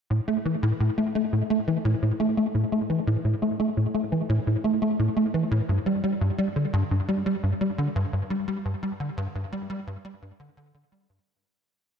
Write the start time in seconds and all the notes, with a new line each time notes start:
0.10 A2
0.28 A3
0.45 E3
0.63 A2
0.80 A2
0.98 A3
1.15 A3
1.33 A2
1.50 A3
1.68 E3
1.85 A2
2.02 A2
2.20 A3
2.37 A3
2.55 A2
2.72 A3
2.90 E3
3.07 A2
3.25 A2
3.42 A3
3.60 A3
3.77 A2
3.94 A3
4.12 E3
4.29 A2
4.47 A2
4.64 A3
4.82 A3
4.99 A2
5.17 A3
5.34 E3
5.51 A2
5.69 G2
5.86 G3
6.04 G3
6.21 G2
6.38 G3
6.56 D3
6.73 G2
6.91 G2
7.08 G3
7.26 G3
7.43 G2
7.61 G3
7.78 D3
7.96 G2
8.13 G2
8.30 G3
8.48 G3
8.65 G2
8.83 G3
9.00 D3
9.17 G2
9.35 G2
9.52 G3
9.70 G3
9.87 G2
10.05 G3
10.22 G2
10.40 D3
10.57 D3
10.74 D3
10.92 G3
11.10 G2